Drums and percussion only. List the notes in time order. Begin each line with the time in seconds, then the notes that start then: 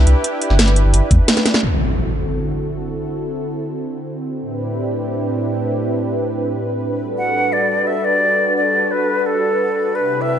0.07 closed hi-hat
0.24 closed hi-hat
0.42 closed hi-hat
0.50 snare
0.59 snare, closed hi-hat
0.68 snare, closed hi-hat
0.76 closed hi-hat
0.94 closed hi-hat
1.11 kick, closed hi-hat
1.28 snare, closed hi-hat
1.37 snare, closed hi-hat
1.46 snare, closed hi-hat
1.54 snare
1.63 crash